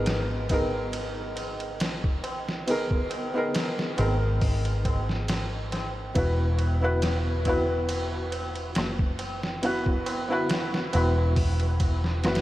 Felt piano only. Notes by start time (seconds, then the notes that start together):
Already playing: B3 D#4 G#4 A#4
0.50 B3 D#4 G#4 A#4
2.67 B3 D#4 G#4 A#4
3.34 B3 D#4 G#4 A#4
3.97 B3 D#4 G#4 A#4
6.15 B3 E4 F#4 B4
6.81 B3 E4 F#4 B4
7.46 B3 E4 F#4 B4
9.62 B3 E4 F#4 B4
10.29 B3 E4 F#4 B4
10.93 B3 E4 F#4 B4
12.24 B3 E4 F#4 B4